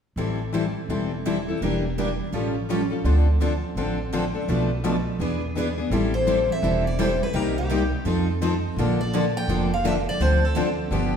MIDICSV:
0, 0, Header, 1, 5, 480
1, 0, Start_track
1, 0, Key_signature, 0, "minor"
1, 0, Tempo, 358209
1, 226, Time_signature, 4, 2, 24, 8
1, 14965, End_track
2, 0, Start_track
2, 0, Title_t, "Steel-string acoustic guitar"
2, 0, Program_c, 0, 25
2, 8227, Note_on_c, 0, 72, 75
2, 8717, Note_off_c, 0, 72, 0
2, 8739, Note_on_c, 0, 76, 79
2, 9203, Note_off_c, 0, 76, 0
2, 9208, Note_on_c, 0, 74, 72
2, 9391, Note_off_c, 0, 74, 0
2, 9391, Note_on_c, 0, 72, 72
2, 9674, Note_off_c, 0, 72, 0
2, 9689, Note_on_c, 0, 71, 73
2, 9858, Note_off_c, 0, 71, 0
2, 9858, Note_on_c, 0, 70, 77
2, 10156, Note_off_c, 0, 70, 0
2, 10157, Note_on_c, 0, 67, 61
2, 10762, Note_off_c, 0, 67, 0
2, 12069, Note_on_c, 0, 74, 77
2, 12554, Note_off_c, 0, 74, 0
2, 12556, Note_on_c, 0, 79, 80
2, 13037, Note_off_c, 0, 79, 0
2, 13046, Note_on_c, 0, 77, 77
2, 13215, Note_off_c, 0, 77, 0
2, 13231, Note_on_c, 0, 76, 75
2, 13306, Note_off_c, 0, 76, 0
2, 13520, Note_on_c, 0, 74, 76
2, 13694, Note_off_c, 0, 74, 0
2, 13694, Note_on_c, 0, 72, 78
2, 13998, Note_off_c, 0, 72, 0
2, 13998, Note_on_c, 0, 69, 63
2, 14642, Note_off_c, 0, 69, 0
2, 14965, End_track
3, 0, Start_track
3, 0, Title_t, "Steel-string acoustic guitar"
3, 0, Program_c, 1, 25
3, 2171, Note_on_c, 1, 64, 55
3, 2175, Note_on_c, 1, 55, 52
3, 2178, Note_on_c, 1, 70, 54
3, 2446, Note_off_c, 1, 64, 0
3, 2448, Note_off_c, 1, 55, 0
3, 2449, Note_off_c, 1, 70, 0
3, 2653, Note_on_c, 1, 64, 66
3, 2655, Note_on_c, 1, 70, 69
3, 2659, Note_on_c, 1, 55, 63
3, 2793, Note_off_c, 1, 64, 0
3, 2794, Note_off_c, 1, 70, 0
3, 2796, Note_off_c, 1, 55, 0
3, 6028, Note_on_c, 1, 71, 59
3, 6298, Note_off_c, 1, 71, 0
3, 6502, Note_on_c, 1, 71, 71
3, 6642, Note_off_c, 1, 71, 0
3, 6991, Note_on_c, 1, 71, 53
3, 7260, Note_off_c, 1, 71, 0
3, 7486, Note_on_c, 1, 71, 69
3, 7614, Note_off_c, 1, 71, 0
3, 14965, End_track
4, 0, Start_track
4, 0, Title_t, "Steel-string acoustic guitar"
4, 0, Program_c, 2, 25
4, 232, Note_on_c, 2, 52, 48
4, 233, Note_on_c, 2, 55, 54
4, 236, Note_on_c, 2, 60, 49
4, 241, Note_on_c, 2, 64, 51
4, 244, Note_on_c, 2, 69, 52
4, 514, Note_off_c, 2, 52, 0
4, 515, Note_off_c, 2, 55, 0
4, 516, Note_off_c, 2, 60, 0
4, 519, Note_off_c, 2, 64, 0
4, 520, Note_off_c, 2, 69, 0
4, 704, Note_on_c, 2, 52, 61
4, 716, Note_on_c, 2, 55, 64
4, 719, Note_on_c, 2, 60, 59
4, 721, Note_on_c, 2, 64, 65
4, 727, Note_on_c, 2, 69, 66
4, 857, Note_off_c, 2, 52, 0
4, 863, Note_off_c, 2, 55, 0
4, 864, Note_off_c, 2, 60, 0
4, 865, Note_off_c, 2, 64, 0
4, 868, Note_off_c, 2, 69, 0
4, 1200, Note_on_c, 2, 52, 46
4, 1201, Note_on_c, 2, 55, 47
4, 1207, Note_on_c, 2, 60, 51
4, 1209, Note_on_c, 2, 64, 50
4, 1212, Note_on_c, 2, 69, 53
4, 1479, Note_off_c, 2, 52, 0
4, 1480, Note_off_c, 2, 55, 0
4, 1483, Note_off_c, 2, 60, 0
4, 1484, Note_off_c, 2, 64, 0
4, 1486, Note_off_c, 2, 69, 0
4, 1683, Note_on_c, 2, 52, 64
4, 1688, Note_on_c, 2, 55, 65
4, 1694, Note_on_c, 2, 64, 71
4, 1699, Note_on_c, 2, 60, 63
4, 1700, Note_on_c, 2, 69, 73
4, 1827, Note_off_c, 2, 52, 0
4, 1830, Note_off_c, 2, 55, 0
4, 1833, Note_off_c, 2, 64, 0
4, 1835, Note_off_c, 2, 60, 0
4, 1836, Note_off_c, 2, 69, 0
4, 1985, Note_on_c, 2, 69, 44
4, 2005, Note_on_c, 2, 64, 42
4, 2019, Note_on_c, 2, 60, 33
4, 2152, Note_off_c, 2, 69, 0
4, 2162, Note_off_c, 2, 64, 0
4, 2169, Note_off_c, 2, 60, 0
4, 2178, Note_on_c, 2, 52, 47
4, 2181, Note_on_c, 2, 58, 53
4, 2187, Note_on_c, 2, 62, 53
4, 2193, Note_on_c, 2, 67, 58
4, 2449, Note_off_c, 2, 52, 0
4, 2451, Note_off_c, 2, 58, 0
4, 2454, Note_off_c, 2, 62, 0
4, 2457, Note_off_c, 2, 67, 0
4, 2654, Note_on_c, 2, 52, 62
4, 2656, Note_on_c, 2, 58, 62
4, 2662, Note_on_c, 2, 62, 69
4, 2669, Note_on_c, 2, 67, 73
4, 2794, Note_off_c, 2, 52, 0
4, 2795, Note_off_c, 2, 58, 0
4, 2798, Note_off_c, 2, 62, 0
4, 2801, Note_off_c, 2, 67, 0
4, 3134, Note_on_c, 2, 53, 48
4, 3134, Note_on_c, 2, 55, 50
4, 3139, Note_on_c, 2, 61, 51
4, 3142, Note_on_c, 2, 65, 49
4, 3153, Note_on_c, 2, 69, 54
4, 3408, Note_off_c, 2, 53, 0
4, 3409, Note_off_c, 2, 55, 0
4, 3411, Note_off_c, 2, 61, 0
4, 3413, Note_off_c, 2, 65, 0
4, 3418, Note_off_c, 2, 69, 0
4, 3603, Note_on_c, 2, 53, 61
4, 3610, Note_on_c, 2, 55, 65
4, 3615, Note_on_c, 2, 61, 65
4, 3617, Note_on_c, 2, 65, 67
4, 3620, Note_on_c, 2, 69, 72
4, 3749, Note_off_c, 2, 53, 0
4, 3753, Note_off_c, 2, 55, 0
4, 3755, Note_off_c, 2, 61, 0
4, 3756, Note_off_c, 2, 65, 0
4, 3758, Note_off_c, 2, 69, 0
4, 3894, Note_on_c, 2, 69, 41
4, 3910, Note_on_c, 2, 65, 37
4, 3925, Note_on_c, 2, 61, 37
4, 4068, Note_off_c, 2, 69, 0
4, 4076, Note_off_c, 2, 65, 0
4, 4079, Note_on_c, 2, 50, 50
4, 4084, Note_off_c, 2, 61, 0
4, 4086, Note_on_c, 2, 53, 51
4, 4093, Note_on_c, 2, 60, 52
4, 4097, Note_on_c, 2, 62, 50
4, 4104, Note_on_c, 2, 69, 55
4, 4362, Note_off_c, 2, 50, 0
4, 4366, Note_off_c, 2, 53, 0
4, 4369, Note_off_c, 2, 60, 0
4, 4371, Note_off_c, 2, 62, 0
4, 4374, Note_off_c, 2, 69, 0
4, 4560, Note_on_c, 2, 50, 63
4, 4567, Note_on_c, 2, 53, 62
4, 4569, Note_on_c, 2, 60, 68
4, 4573, Note_on_c, 2, 62, 69
4, 4576, Note_on_c, 2, 69, 67
4, 4709, Note_off_c, 2, 50, 0
4, 4712, Note_off_c, 2, 53, 0
4, 4713, Note_off_c, 2, 60, 0
4, 4715, Note_off_c, 2, 62, 0
4, 4717, Note_off_c, 2, 69, 0
4, 5053, Note_on_c, 2, 50, 52
4, 5056, Note_on_c, 2, 53, 49
4, 5058, Note_on_c, 2, 60, 55
4, 5065, Note_on_c, 2, 62, 60
4, 5066, Note_on_c, 2, 69, 59
4, 5330, Note_off_c, 2, 50, 0
4, 5331, Note_off_c, 2, 53, 0
4, 5333, Note_off_c, 2, 60, 0
4, 5336, Note_off_c, 2, 62, 0
4, 5336, Note_off_c, 2, 69, 0
4, 5529, Note_on_c, 2, 50, 72
4, 5534, Note_on_c, 2, 53, 69
4, 5539, Note_on_c, 2, 60, 74
4, 5540, Note_on_c, 2, 62, 72
4, 5546, Note_on_c, 2, 69, 71
4, 5674, Note_off_c, 2, 50, 0
4, 5677, Note_off_c, 2, 53, 0
4, 5679, Note_off_c, 2, 60, 0
4, 5680, Note_off_c, 2, 62, 0
4, 5683, Note_off_c, 2, 69, 0
4, 5823, Note_on_c, 2, 69, 40
4, 5835, Note_on_c, 2, 62, 39
4, 5847, Note_on_c, 2, 60, 35
4, 5994, Note_off_c, 2, 69, 0
4, 6000, Note_off_c, 2, 62, 0
4, 6006, Note_off_c, 2, 60, 0
4, 6006, Note_on_c, 2, 47, 53
4, 6012, Note_on_c, 2, 53, 52
4, 6014, Note_on_c, 2, 57, 55
4, 6017, Note_on_c, 2, 62, 54
4, 6019, Note_on_c, 2, 69, 54
4, 6287, Note_off_c, 2, 47, 0
4, 6290, Note_off_c, 2, 53, 0
4, 6291, Note_off_c, 2, 57, 0
4, 6293, Note_off_c, 2, 62, 0
4, 6294, Note_off_c, 2, 69, 0
4, 6480, Note_on_c, 2, 47, 67
4, 6484, Note_on_c, 2, 53, 69
4, 6488, Note_on_c, 2, 57, 62
4, 6488, Note_on_c, 2, 62, 61
4, 6496, Note_on_c, 2, 69, 75
4, 6631, Note_off_c, 2, 47, 0
4, 6632, Note_off_c, 2, 53, 0
4, 6634, Note_off_c, 2, 57, 0
4, 6634, Note_off_c, 2, 62, 0
4, 6638, Note_off_c, 2, 69, 0
4, 6963, Note_on_c, 2, 52, 50
4, 6968, Note_on_c, 2, 59, 53
4, 6975, Note_on_c, 2, 68, 55
4, 6976, Note_on_c, 2, 62, 50
4, 7246, Note_off_c, 2, 52, 0
4, 7248, Note_off_c, 2, 59, 0
4, 7252, Note_off_c, 2, 68, 0
4, 7253, Note_off_c, 2, 62, 0
4, 7442, Note_on_c, 2, 52, 66
4, 7451, Note_on_c, 2, 59, 64
4, 7451, Note_on_c, 2, 62, 68
4, 7462, Note_on_c, 2, 68, 78
4, 7592, Note_off_c, 2, 52, 0
4, 7596, Note_off_c, 2, 59, 0
4, 7596, Note_off_c, 2, 62, 0
4, 7602, Note_off_c, 2, 68, 0
4, 7742, Note_on_c, 2, 68, 44
4, 7754, Note_on_c, 2, 62, 34
4, 7768, Note_on_c, 2, 59, 32
4, 7915, Note_off_c, 2, 68, 0
4, 7921, Note_off_c, 2, 62, 0
4, 7924, Note_off_c, 2, 59, 0
4, 7927, Note_on_c, 2, 52, 60
4, 7927, Note_on_c, 2, 55, 64
4, 7930, Note_on_c, 2, 60, 60
4, 7940, Note_on_c, 2, 64, 60
4, 7943, Note_on_c, 2, 69, 58
4, 8208, Note_off_c, 2, 52, 0
4, 8208, Note_off_c, 2, 55, 0
4, 8210, Note_off_c, 2, 60, 0
4, 8215, Note_off_c, 2, 64, 0
4, 8216, Note_off_c, 2, 69, 0
4, 8397, Note_on_c, 2, 52, 70
4, 8400, Note_on_c, 2, 55, 78
4, 8402, Note_on_c, 2, 60, 71
4, 8409, Note_on_c, 2, 64, 75
4, 8413, Note_on_c, 2, 69, 71
4, 8549, Note_off_c, 2, 52, 0
4, 8551, Note_off_c, 2, 55, 0
4, 8552, Note_off_c, 2, 60, 0
4, 8555, Note_off_c, 2, 64, 0
4, 8557, Note_off_c, 2, 69, 0
4, 8871, Note_on_c, 2, 52, 57
4, 8881, Note_on_c, 2, 55, 57
4, 8882, Note_on_c, 2, 60, 54
4, 8890, Note_on_c, 2, 64, 59
4, 8894, Note_on_c, 2, 69, 56
4, 9160, Note_off_c, 2, 52, 0
4, 9165, Note_off_c, 2, 55, 0
4, 9165, Note_off_c, 2, 60, 0
4, 9169, Note_off_c, 2, 64, 0
4, 9171, Note_off_c, 2, 69, 0
4, 9362, Note_on_c, 2, 52, 72
4, 9363, Note_on_c, 2, 55, 72
4, 9371, Note_on_c, 2, 60, 77
4, 9375, Note_on_c, 2, 64, 84
4, 9379, Note_on_c, 2, 69, 82
4, 9511, Note_off_c, 2, 52, 0
4, 9512, Note_off_c, 2, 55, 0
4, 9516, Note_off_c, 2, 60, 0
4, 9518, Note_off_c, 2, 64, 0
4, 9520, Note_off_c, 2, 69, 0
4, 9838, Note_on_c, 2, 48, 59
4, 9845, Note_on_c, 2, 55, 60
4, 9847, Note_on_c, 2, 58, 60
4, 9853, Note_on_c, 2, 63, 62
4, 9856, Note_on_c, 2, 67, 67
4, 10123, Note_off_c, 2, 48, 0
4, 10126, Note_off_c, 2, 55, 0
4, 10127, Note_off_c, 2, 58, 0
4, 10130, Note_off_c, 2, 63, 0
4, 10132, Note_off_c, 2, 67, 0
4, 10322, Note_on_c, 2, 48, 67
4, 10327, Note_on_c, 2, 55, 68
4, 10332, Note_on_c, 2, 58, 77
4, 10335, Note_on_c, 2, 63, 76
4, 10343, Note_on_c, 2, 67, 76
4, 10471, Note_off_c, 2, 48, 0
4, 10473, Note_off_c, 2, 55, 0
4, 10476, Note_off_c, 2, 58, 0
4, 10477, Note_off_c, 2, 63, 0
4, 10481, Note_off_c, 2, 67, 0
4, 10810, Note_on_c, 2, 53, 53
4, 10815, Note_on_c, 2, 60, 60
4, 10816, Note_on_c, 2, 63, 65
4, 10820, Note_on_c, 2, 69, 55
4, 11088, Note_off_c, 2, 53, 0
4, 11091, Note_off_c, 2, 60, 0
4, 11091, Note_off_c, 2, 63, 0
4, 11093, Note_off_c, 2, 69, 0
4, 11276, Note_on_c, 2, 53, 80
4, 11287, Note_on_c, 2, 60, 76
4, 11292, Note_on_c, 2, 63, 87
4, 11295, Note_on_c, 2, 69, 74
4, 11427, Note_off_c, 2, 53, 0
4, 11432, Note_off_c, 2, 60, 0
4, 11435, Note_off_c, 2, 63, 0
4, 11436, Note_off_c, 2, 69, 0
4, 11771, Note_on_c, 2, 50, 58
4, 11773, Note_on_c, 2, 53, 62
4, 11779, Note_on_c, 2, 58, 64
4, 11783, Note_on_c, 2, 62, 58
4, 11784, Note_on_c, 2, 69, 62
4, 12047, Note_off_c, 2, 50, 0
4, 12048, Note_off_c, 2, 53, 0
4, 12051, Note_off_c, 2, 58, 0
4, 12053, Note_off_c, 2, 62, 0
4, 12054, Note_off_c, 2, 69, 0
4, 12238, Note_on_c, 2, 50, 72
4, 12249, Note_on_c, 2, 53, 73
4, 12255, Note_on_c, 2, 58, 75
4, 12257, Note_on_c, 2, 62, 87
4, 12258, Note_on_c, 2, 69, 87
4, 12386, Note_off_c, 2, 50, 0
4, 12392, Note_off_c, 2, 53, 0
4, 12395, Note_off_c, 2, 58, 0
4, 12396, Note_off_c, 2, 62, 0
4, 12397, Note_off_c, 2, 69, 0
4, 12716, Note_on_c, 2, 50, 60
4, 12721, Note_on_c, 2, 58, 56
4, 12722, Note_on_c, 2, 53, 61
4, 12732, Note_on_c, 2, 62, 55
4, 12734, Note_on_c, 2, 69, 66
4, 12998, Note_off_c, 2, 50, 0
4, 13001, Note_off_c, 2, 53, 0
4, 13001, Note_off_c, 2, 58, 0
4, 13006, Note_off_c, 2, 62, 0
4, 13007, Note_off_c, 2, 69, 0
4, 13185, Note_on_c, 2, 50, 73
4, 13194, Note_on_c, 2, 53, 80
4, 13196, Note_on_c, 2, 58, 81
4, 13198, Note_on_c, 2, 69, 76
4, 13201, Note_on_c, 2, 62, 79
4, 13338, Note_off_c, 2, 50, 0
4, 13343, Note_off_c, 2, 53, 0
4, 13344, Note_off_c, 2, 58, 0
4, 13345, Note_off_c, 2, 69, 0
4, 13347, Note_off_c, 2, 62, 0
4, 13676, Note_on_c, 2, 50, 56
4, 13682, Note_on_c, 2, 53, 57
4, 13686, Note_on_c, 2, 60, 58
4, 13687, Note_on_c, 2, 62, 60
4, 13693, Note_on_c, 2, 69, 65
4, 13956, Note_off_c, 2, 50, 0
4, 13960, Note_off_c, 2, 53, 0
4, 13962, Note_off_c, 2, 60, 0
4, 13962, Note_off_c, 2, 62, 0
4, 13965, Note_off_c, 2, 69, 0
4, 14151, Note_on_c, 2, 50, 79
4, 14154, Note_on_c, 2, 53, 73
4, 14159, Note_on_c, 2, 60, 74
4, 14163, Note_on_c, 2, 62, 78
4, 14166, Note_on_c, 2, 69, 87
4, 14300, Note_off_c, 2, 50, 0
4, 14302, Note_off_c, 2, 53, 0
4, 14304, Note_off_c, 2, 60, 0
4, 14306, Note_off_c, 2, 62, 0
4, 14307, Note_off_c, 2, 69, 0
4, 14616, Note_on_c, 2, 50, 59
4, 14623, Note_on_c, 2, 53, 51
4, 14629, Note_on_c, 2, 59, 57
4, 14632, Note_on_c, 2, 62, 58
4, 14638, Note_on_c, 2, 67, 64
4, 14905, Note_off_c, 2, 50, 0
4, 14908, Note_off_c, 2, 53, 0
4, 14911, Note_off_c, 2, 59, 0
4, 14913, Note_off_c, 2, 62, 0
4, 14916, Note_off_c, 2, 67, 0
4, 14965, End_track
5, 0, Start_track
5, 0, Title_t, "Upright bass"
5, 0, Program_c, 3, 32
5, 213, Note_on_c, 3, 33, 64
5, 988, Note_off_c, 3, 33, 0
5, 1180, Note_on_c, 3, 28, 60
5, 1953, Note_off_c, 3, 28, 0
5, 2159, Note_on_c, 3, 28, 66
5, 2926, Note_off_c, 3, 28, 0
5, 3116, Note_on_c, 3, 33, 65
5, 3885, Note_off_c, 3, 33, 0
5, 4075, Note_on_c, 3, 38, 68
5, 4845, Note_off_c, 3, 38, 0
5, 5029, Note_on_c, 3, 33, 64
5, 5802, Note_off_c, 3, 33, 0
5, 5999, Note_on_c, 3, 35, 68
5, 6768, Note_off_c, 3, 35, 0
5, 6948, Note_on_c, 3, 40, 68
5, 7721, Note_off_c, 3, 40, 0
5, 7906, Note_on_c, 3, 33, 72
5, 8680, Note_off_c, 3, 33, 0
5, 8876, Note_on_c, 3, 28, 69
5, 9645, Note_off_c, 3, 28, 0
5, 9832, Note_on_c, 3, 36, 79
5, 10602, Note_off_c, 3, 36, 0
5, 10789, Note_on_c, 3, 41, 71
5, 11559, Note_off_c, 3, 41, 0
5, 11744, Note_on_c, 3, 34, 81
5, 12515, Note_off_c, 3, 34, 0
5, 12701, Note_on_c, 3, 29, 75
5, 13472, Note_off_c, 3, 29, 0
5, 13664, Note_on_c, 3, 38, 79
5, 14432, Note_off_c, 3, 38, 0
5, 14614, Note_on_c, 3, 31, 76
5, 14965, Note_off_c, 3, 31, 0
5, 14965, End_track
0, 0, End_of_file